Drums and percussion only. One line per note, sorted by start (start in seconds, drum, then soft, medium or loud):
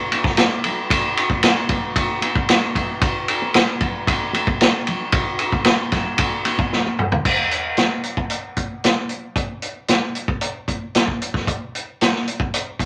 0.12 ride medium
0.12 high conga medium
0.24 kick medium
0.24 snare soft
0.24 high conga medium
0.37 snare loud
0.37 ride medium
0.64 ride medium
0.64 low conga medium
0.90 kick medium
0.90 ride medium
1.17 ride medium
1.30 kick medium
1.30 high conga medium
1.43 snare medium
1.43 ride medium
1.69 kick medium
1.69 ride medium
1.69 high conga medium
1.69 low conga medium
1.96 kick medium
1.96 ride medium
2.22 ride medium
2.22 high conga medium
2.35 kick medium
2.35 high conga medium
2.49 snare medium
2.49 ride medium
2.75 kick medium
2.75 ride medium
2.75 low conga medium
3.01 kick loud
3.01 ride medium
3.28 ride medium
3.42 high conga medium
3.54 snare loud
3.54 ride medium
3.81 kick medium
3.81 ride medium
3.81 high conga medium
3.81 low conga medium
4.07 kick medium
4.07 ride medium
4.33 ride medium
4.33 high conga medium
4.47 kick medium
4.47 high conga medium
4.61 snare loud
4.61 ride medium
4.87 ride medium
4.87 low conga medium
5.12 kick loud
5.12 ride medium
5.39 ride medium
5.52 kick medium
5.52 high conga medium
5.64 snare medium
5.64 ride medium
5.92 kick medium
5.92 snare soft
5.92 ride medium
5.92 high conga medium
5.92 low conga medium
6.18 kick medium
6.18 ride medium
6.45 ride medium
6.45 high conga medium
6.58 kick medium
6.58 high conga medium
6.73 snare medium
6.87 high conga medium
6.99 mid tom medium
6.99 low conga medium
7.12 floor tom medium
7.25 kick medium
7.25 crash medium
7.51 closed hi-hat medium
7.77 snare medium
7.77 closed hi-hat medium
8.03 closed hi-hat medium
8.17 kick medium
8.30 closed hi-hat medium
8.56 kick medium
8.56 closed hi-hat soft
8.84 snare medium
8.84 closed hi-hat medium
9.09 closed hi-hat medium
9.36 kick medium
9.36 closed hi-hat medium
9.62 closed hi-hat medium
9.88 snare medium
9.88 closed hi-hat medium
10.15 closed hi-hat medium
10.28 kick medium
10.41 closed hi-hat medium
10.68 kick medium
10.68 closed hi-hat medium
10.95 snare medium
10.95 closed hi-hat medium
11.08 kick medium
11.22 closed hi-hat medium
11.34 kick medium
11.34 snare soft
11.47 kick medium
11.47 closed hi-hat medium
11.75 closed hi-hat medium
12.01 snare medium
12.01 closed hi-hat medium
12.16 snare soft
12.27 closed hi-hat medium
12.40 kick medium
12.54 closed hi-hat medium
12.79 kick medium
12.79 closed hi-hat medium